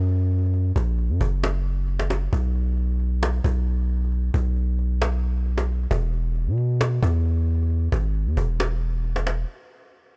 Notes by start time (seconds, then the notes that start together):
Already playing: F#2
0.09 cajon slap
0.31 cajon slap
0.39 cajon slap
0.46 cajon slap
0.54 cajon slap
0.76 A#1, cajon bass
0.98 cajon slap
1.09 F#2
1.21 F#1, cajon bass
1.44 cajon slap
1.66 cajon slap
1.88 cajon slap
1.99 cajon slap
2.10 cajon slap
2.33 B1, cajon bass
2.55 cajon slap
2.77 cajon slap
3.00 cajon slap
3.23 cajon slap
3.44 B1, cajon bass
3.67 cajon slap
3.89 cajon slap
3.97 cajon slap
4.04 cajon slap
4.12 cajon slap
4.34 B1, cajon bass
4.56 cajon slap
4.79 cajon slap
5.02 cajon slap
5.24 cajon slap
5.46 cajon slap
5.58 cajon slap
5.68 cajon slap
5.76 cajon slap
5.83 cajon slap
5.91 E1, cajon bass
6.13 cajon slap
6.35 cajon slap
6.47 B2
6.58 cajon slap
6.81 cajon slap
7.03 E2, cajon bass
7.25 cajon slap
7.48 cajon slap
7.55 cajon slap
7.63 cajon slap
7.70 cajon slap
7.92 G#1, cajon bass
8.15 cajon slap
8.26 E2
8.37 E1, cajon bass
8.60 cajon slap
8.82 cajon slap
9.04 cajon slap
9.16 cajon slap
9.27 cajon slap